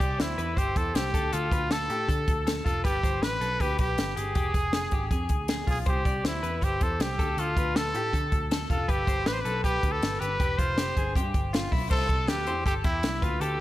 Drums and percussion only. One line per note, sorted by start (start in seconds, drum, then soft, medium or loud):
0.00 kick medium
0.00 closed hi-hat medium
0.20 snare loud
0.20 closed hi-hat medium
0.39 closed hi-hat medium
0.57 kick medium
0.57 closed hi-hat medium
0.76 kick medium
0.76 closed hi-hat medium
0.95 snare loud
0.95 closed hi-hat medium
1.14 kick medium
1.14 closed hi-hat medium
1.33 closed hi-hat medium
1.52 kick medium
1.52 closed hi-hat medium
1.71 snare loud
1.71 closed hi-hat medium
1.90 closed hi-hat medium
2.09 kick medium
2.09 closed hi-hat medium
2.28 kick medium
2.28 closed hi-hat medium
2.47 snare loud
2.47 closed hi-hat medium
2.66 kick medium
2.66 closed hi-hat medium
2.85 kick loud
2.85 closed hi-hat medium
3.03 kick medium
3.03 closed hi-hat medium
3.23 snare loud
3.23 closed hi-hat medium
3.41 closed hi-hat medium
3.60 kick medium
3.60 closed hi-hat medium
3.79 kick medium
3.79 closed hi-hat medium
3.98 snare loud
3.98 closed hi-hat medium
4.17 closed hi-hat medium
4.35 kick medium
4.35 closed hi-hat medium
4.54 kick medium
4.54 closed hi-hat medium
4.73 snare loud
4.73 closed hi-hat medium
4.91 kick medium
4.91 closed hi-hat medium
5.11 kick medium
5.11 closed hi-hat medium
5.29 kick medium
5.29 closed hi-hat medium
5.48 snare loud
5.48 closed hi-hat medium
5.67 kick medium
5.67 open hi-hat medium
5.86 kick loud
5.86 closed hi-hat medium
6.05 kick medium
6.05 closed hi-hat medium
6.25 snare loud
6.25 closed hi-hat medium
6.43 closed hi-hat medium
6.62 kick medium
6.62 closed hi-hat medium
6.81 kick medium
6.81 closed hi-hat medium
7.00 snare loud
7.00 closed hi-hat medium
7.19 kick medium
7.19 closed hi-hat medium
7.38 closed hi-hat medium
7.57 kick medium
7.57 closed hi-hat medium
7.76 snare loud
7.76 closed hi-hat medium
7.94 closed hi-hat medium
8.13 kick medium
8.13 closed hi-hat medium
8.32 kick medium
8.32 closed hi-hat medium
8.51 snare loud
8.51 closed hi-hat medium
8.70 kick medium
8.70 closed hi-hat medium
8.89 kick medium
8.89 closed hi-hat medium
9.07 kick medium
9.07 closed hi-hat medium
9.26 snare loud
9.26 closed hi-hat medium
9.45 closed hi-hat medium
9.64 kick medium
9.64 closed hi-hat medium
9.83 kick medium
9.83 closed hi-hat medium
10.03 snare loud
10.03 closed hi-hat medium
10.22 closed hi-hat medium
10.40 kick medium
10.40 closed hi-hat medium
10.59 kick medium
10.59 closed hi-hat medium
10.78 snare loud
10.78 closed hi-hat medium
10.97 kick medium
10.97 closed hi-hat medium
11.15 kick medium
11.15 closed hi-hat medium
11.34 kick medium
11.34 closed hi-hat medium
11.54 snare loud
11.54 closed hi-hat medium
11.72 kick medium
11.72 open hi-hat medium
11.91 kick medium
11.91 crash medium
12.09 kick medium
12.09 closed hi-hat medium
12.28 snare loud
12.28 closed hi-hat medium
12.47 closed hi-hat medium
12.66 kick medium
12.66 closed hi-hat medium
12.84 kick medium
12.84 closed hi-hat medium
13.03 snare loud
13.03 closed hi-hat medium
13.22 kick medium
13.22 closed hi-hat medium
13.41 closed hi-hat medium